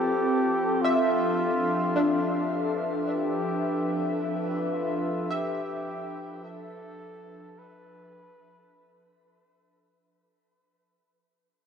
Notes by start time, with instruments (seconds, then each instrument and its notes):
Already playing: synth drone F3 C4, ambient pad C4 F4 A4, flugelhorn G4
0.82 ambient pad F3, flugelhorn F4, synth pluck E5
0.98 ambient pad D4
1.71 ambient pad E5
1.96 synth pluck D4
2.33 ambient pad B4
3.06 flugelhorn G4
4.73 flugelhorn F4
5.30 flugelhorn G4, synth pluck E5
6.45 flugelhorn A4
7.59 flugelhorn B4